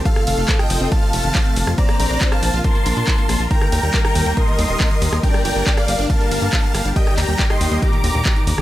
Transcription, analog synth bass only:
\new Staff \with { instrumentName = "Analog synth bass" } { \clef bass \time 4/4 \key ees \lydian \tempo 4 = 139 r8 f,,16 f,,16 r8 f,,16 f,,16 r8 f,,16 f,,16 r8 f,,16 f,16 | r8 bes,,16 bes,,16 r8 bes,,16 bes,,16 r8 bes,,16 bes,16 r8 bes,,16 bes,,16 | r8 ees,16 ees,16 r8 ees,16 ees,16 r8 ees,16 ees,,16 r8 ees,16 ees,16 | r8 g,,16 g,,16 r8 g,,16 g,,16 r8 g,,16 g,16 r8 g,,16 g,,16 |
r8 ees,16 ees,16 r8 ees,16 ees,16 r8 ees,16 ees,16 r8 ees,16 ees,,16 | }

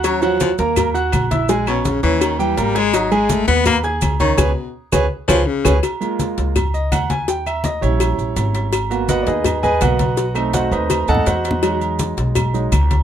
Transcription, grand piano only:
<<
  \new Staff \with { instrumentName = "Grand piano" } { \time 4/4 \key cis \mixolydian \tempo 4 = 166 <cis' cis'' cis'''>8 <fis fis' fis''>4 <ais ais' ais''>4 <fis' fis'' fis'''>4 <e' e'' e'''>8 | <gis gis' gis''>8 <cis' cis'' cis'''>4 <cis' cis'' cis'''>4 <g g' g''>8 <ais ais' ais''>8 <gis' gis'' gis'''>8 | <dis' dis'' dis'''>8 <gis gis' gis''>4 <b b' b''>4 <gis' gis'' gis'''>4 <cis' cis'' cis'''>8 | <gis' b' cis''>8 r4 <gis' b' cis''>8 r8 <gis' b' cis''>8 r8 <gis' b' cis''>8 |
r2 r8 dis''8 fis''8 gis''8 | g''8 e''8 dis''8 cis''2~ cis''8 | r4 <fis' b' dis'' fis''>8 <dis' gis' b' d'' dis''>4 <gis' b' dis'' gis''>8 <b' dis'' fis''>4~ | <b' dis'' fis''>8 r8 <fis' c'' dis'' fis''>8 <dis' b' c'' dis''>4 <a' dis'' fis'' a''>8 <fis' c'' dis'' fis''>4~ |
<fis' c'' dis'' fis''>8 r2. r8 | }
  \new Staff \with { instrumentName = "Grand piano" } { \time 4/4 \key cis \mixolydian r1 | r1 | r1 | r1 |
r8 <gis ais eis'>4. r2 | r4. <g cis' e'>2~ <g cis' e'>8 | r8 <ais b fis'>4. r4 <ais b fis'>8 r8 | r8 <a c' dis'>2 <a c' dis'>8 r4 |
<fis gis dis'>2~ <fis gis dis'>8 <fis gis dis'>8 r4 | }
>>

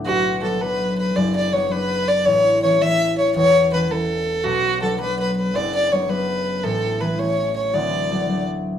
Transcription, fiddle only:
\new Staff \with { instrumentName = "Fiddle" } { \time 6/8 \key b \minor \tempo 4. = 109 fis'4 a'8 b'4 b'8 | d''8 d''8 cis''8 b'4 d''8 | cis''4 cis''8 e''4 cis''8 | cis''4 b'8 a'4. |
fis'4 a'8 b'8 b'8 b'8 | d''8 d''8 cis''8 b'4. | a'4 b'8 cis''4 cis''8 | d''2 r4 | }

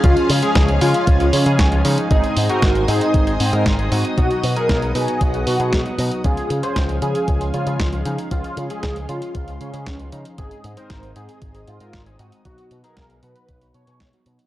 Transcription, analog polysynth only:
\new Staff \with { instrumentName = "Analog polysynth" } { \time 4/4 \key des \major \tempo 4 = 116 <f aes des' f'>8. <f aes des' aes'>8. <f aes des' f'>8. <f aes des' f'>8 <f aes des' aes'>8 <f aes des' f'>16 <f aes des' ees'>8 | <aes, aes c' ees' aes'>8. <aes, aes c' ees' bes'>8. <aes, aes c' ees' aes'>8. <aes, aes c' ees' aes'>8 <aes, aes c' ees' bes'>8 <aes, aes c' ees' aes'>16 <aes c' ees' ges'>8 | <ces ges ces' ees' ges'>8. <ces ges ces' ees' aes'>8. <ces ges ces' ees' ges'>8. <ces ges ces' ees' ges'>8 <ces ges ces' ees' aes'>8 <ces ges ces' ees' ges'>16 <ges ces' ees' ges'>8 | <f aes des' f'>8. <f aes des' aes'>8. <f aes des' f'>8. <f aes des' f'>8 <f aes des' aes'>8 <f aes des' f'>16 <f aes des' ees'>8 |
<f aes des' f'>8. <f aes des' aes'>8. <f aes des' f'>8. <f aes des' f'>8 <f aes des' aes'>8 <f aes des' f'>16 <f aes des' ees'>8 | <aes, aes c' ees' aes'>8. <aes, aes c' ees' bes'>8. <aes, aes c' ees' aes'>8. <aes, aes c' ees' aes'>8 <aes, aes c' ees' bes'>8 <aes, aes c' ees' aes'>16 <aes c' ees' ges'>8 | <ces ges ces' ees' ges'>8. <ces ges ces' ees' aes'>8. <ces ges ces' ees' ges'>8. <ces ges ces' ees' ges'>8 <ces ges ces' ees' aes'>8 <ces ges ces' ees' ges'>16 <ces ges ces' ees' ges'>8 | }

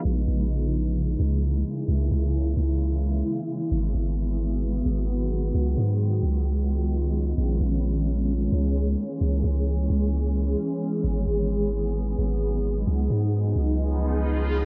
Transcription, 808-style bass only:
\new Staff \with { instrumentName = "808-style bass" } { \clef bass \time 4/4 \key cis \dorian \tempo 4 = 131 ais,,8 ais,,2 cis,4 r8 | cis,8 cis,4 cis,4. r4 | gis,,8 gis,,2 gis,,4. | cis,8 gis,4 cis,2~ cis,8 |
ais,,8 ais,,2 cis,4 r8 | cis,8 cis,4 cis,4. r4 | gis,,8 gis,,2 gis,,4. | cis,8 gis,4 cis,2~ cis,8 | }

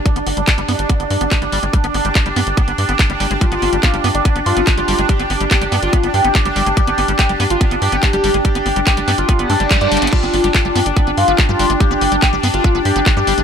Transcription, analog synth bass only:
\new Staff \with { instrumentName = "Analog synth bass" } { \clef bass \time 4/4 \key g \major \tempo 4 = 143 r16 g,,16 g,,16 g,,16 r16 g,,16 g,16 g,,16 r16 g,,16 g,16 g,,16 r16 g,,16 g,,16 g,,16 | r16 g,,16 g,,16 g,,16 r16 g,,16 g,16 g,,16 r16 g,,16 g,16 g,,16 r16 g,,16 g,,16 g,,16 | r16 g,,16 g,,16 g,,16 r16 g,,16 g,16 g,,16 r16 g,,16 g,16 g,,16 r16 g,,16 g,,16 g,,16 | r16 g,,16 g,,16 g,,16 r16 g,,16 g,16 g,,16 r16 g,,16 g,16 g,,16 r16 g,,16 g,,16 g,,16 |
r16 g,,16 g,,16 g,,16 r16 g,,16 g,16 g,,16 r16 g,,16 g,16 g,,16 r16 g,,16 g,,16 g,,16 | r16 g,,16 g,,16 g,,16 r16 g,,16 g,16 g,,16 r16 g,,16 g,16 g,,16 r16 g,16 g,,16 g,,16 | r16 g,,16 g,,16 g,,16 r16 g,,16 g,16 g,,16 r16 g,,16 g,16 g,,16 r16 g,16 g,,16 g,,16 | r16 g,,16 g,,16 g,,16 r16 g,,16 g,16 g,,16 r16 g,,16 g,16 g,,16 r16 g,16 g,,16 g,,16 | }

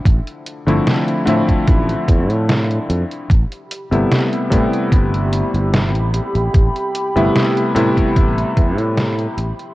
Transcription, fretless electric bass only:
\new Staff \with { instrumentName = "Fretless electric bass" } { \clef bass \time 4/4 \key a \minor \tempo 4 = 74 a,,16 r8 g,,16 r8 a,16 r16 a,,16 r16 e,16 a,8 r16 f,16 r16 | a,,16 r8 g,,16 r8 a,16 r16 g,,8 r16 g,,8 a,,16 r16 a,,16 | a,,16 r8 g,,16 r8 a,16 r16 a,,16 r16 e,16 a,8 r16 a,,16 r16 | }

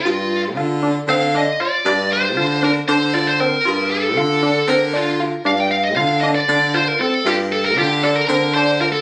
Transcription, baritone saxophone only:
\new Staff \with { instrumentName = "Baritone saxophone" } { \clef bass \time 7/8 \key g \minor \tempo 4 = 116 g,4 d4 d4 r8 | g,4 d4 d4. | g,4 d4 d4. | g,4 d4 d4 r8 |
g,4 d4 d4. | }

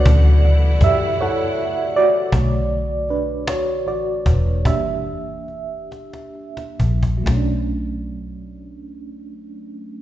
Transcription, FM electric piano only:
<<
  \new Staff \with { instrumentName = "FM electric piano" } { \time 6/8 \key b \minor \tempo 4. = 50 <fis' d''>4 <g' e''>8 <e' a' cis'' fis''>4 <fis' d''>8~ | <fis' d''>4 <d' b'>8 <fis' cis''>8 <fis' d''>4 | <g' e''>2 r4 | <fis a cis' d'>2. | }
  \new Staff \with { instrumentName = "FM electric piano" } { \clef bass \time 6/8 \key b \minor <cis e fis>8 r2 r8 | <d a>4. r4. | <e g ais d'>8 r2 r8 | r2. | }
>>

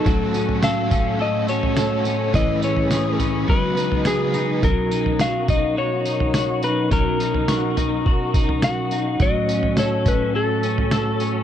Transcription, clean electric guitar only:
\new Staff \with { instrumentName = "Clean electric guitar" } { \time 4/4 \key fis \major \tempo 4 = 105 fis8 cis'8 a'8 cis'8 a'8 cis'8 a'8 cis'8 | e8 cis'8 gis'8 cis'8 fis8 dis'8 gis'8 dis'8 | fis8 dis'8 fis'8 dis'8 fis'8 dis'8 fis'8 dis'8 | fis8 dis'8 fis'8 dis'8 fis'8 dis'8 fis'8 dis'8 |
fis8 cis'8 a'8 cis'8 a'8 cis'8 a'8 cis'8 | }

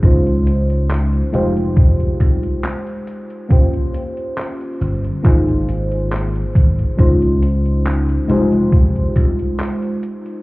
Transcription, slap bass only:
\new Staff \with { instrumentName = "Slap bass" } { \clef bass \time 4/4 \key f \minor \tempo 4 = 69 des,4. f,,4 c,8 r4 | r4. g,,8 aes,,4. aes,,8 | des,4. f,,4 c,8 r4 | }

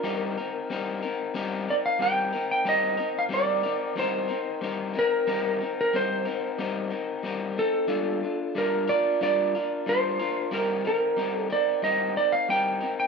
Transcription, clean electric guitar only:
\new Staff \with { instrumentName = "Clean electric guitar" } { \time 4/4 \key ees \lydian \tempo 4 = 92 <g c' ees' bes'>8 <c' ees' bes'>8 <g c' ees' bes'>8 <c' ees' bes'>8 <g c' ees' bes'>8 <c' ees' bes'>8 <g c' ees' bes'>8 <c' ees' bes'>8 | <g c' ees' bes'>8 <c' ees' bes'>8 <g c' ees' bes'>8 <c' ees' bes'>8 <g c' ees' bes'>8 <c' ees' bes'>8 <g c' ees' bes'>8 <c' ees' bes'>8 | <g c' ees' bes'>8 <c' ees' bes'>8 <g c' ees' bes'>8 <c' ees' bes'>8 <g c' ees' bes'>8 <c' ees' bes'>8 <g c' ees' bes'>8 <c' ees'>8 | <g d' f'>8 <d' f'>8 <g d' f' bes'>8 <d' f' bes'>8 <g d' f' bes'>8 <d' f' bes'>8 <g d' f' bes'>8 <d' f' bes'>8 |
<g c' ees' bes'>8 <c' ees' bes'>8 <g c' ees' bes'>8 <c' ees' bes'>8 <g c' ees' bes'>8 <c' ees' bes'>8 <g c' ees' bes'>8 <c' ees' bes'>8 | }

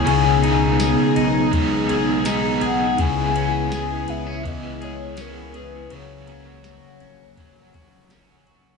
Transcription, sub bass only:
\new Staff \with { instrumentName = "Sub bass" } { \clef bass \time 4/4 \key cis \dorian \tempo 4 = 82 cis,4~ cis,16 r16 b,,4 b,,4 b,,8 | cis,4. cis,2~ cis,8 | cis,4~ cis,16 r16 ais,,4 ais,,4 b,,8 | }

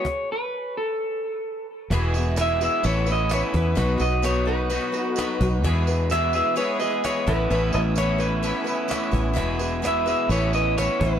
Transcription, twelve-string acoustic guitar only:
\new Staff \with { instrumentName = "Twelve-string acoustic guitar" } { \time 4/4 \key e \major \tempo 4 = 129 r1 | <e gis b e' gis'>8 <b e' gis'>8 <gis b e' gis'>8 <b e' gis'>8 <a cis' e' b'>8 <cis' e' b'>8 <a cis' e' b'>8 <cis' e' b'>8 | <b, b dis' fis' b'>8 <dis' fis' b'>8 <b dis' fis' b'>8 <dis' fis' b'>8 <b, b dis' fis' b'>8 <dis' fis' b'>8 <b dis' fis' b'>8 <dis' fis' b'>8 | <e e' gis' b'>8 <e' gis' b'>8 <e e' gis' b'>8 <e' gis' b'>8 <e e' gis' b'>8 <e' gis' b'>8 <e e' gis' b'>8 <cis' e' b'>8 |
<a cis' e' b'>8 <cis' e' b'>8 <a cis' e' b'>8 <cis' e' b'>8 <a cis' e' b'>8 <cis' e' b'>8 <a cis' e' b'>8 <cis' e' b'>8 | <e e' gis' b'>8 <e' gis' b'>8 <e e' gis' b'>8 <e' gis' b'>8 <a cis' e' b'>8 <cis' e' b'>8 <a cis' e' b'>8 <cis' e' b'>8 | }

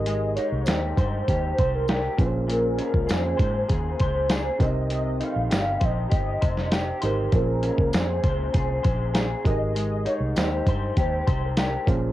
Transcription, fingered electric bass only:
\new Staff \with { instrumentName = "Fingered electric bass" } { \clef bass \time 4/4 \key aes \major \tempo 4 = 99 aes,,8. c,16 ees,8 g,8 ees,8 c,4 bes,,8~ | bes,,8. des,16 f,8 aes,8 ees,8 des,4 c,8~ | c,8. bes,,16 r8 bes,,8 g,,8 f,,4 aes,,8 | bes,,8. des,16 f,8 des,8 c,8 bes,,4 aes,,8~ |
aes,,8. c,16 ees,8 g,8 ees,8 c,4 bes,,8 | }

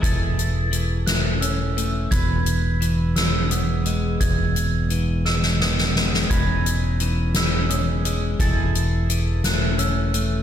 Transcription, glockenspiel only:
\new Staff \with { instrumentName = "Glockenspiel" } { \time 6/8 \key e \major \tempo 4. = 57 a'''4 r8 fis'''8 e'''4 | gis'''4 r8 e'''8 dis'''4 | gis'''4 r8 e'''8 dis'''4 | gis'''4 r8 e'''8 dis'''4 |
a'''4 r8 fis'''8 e'''4 | }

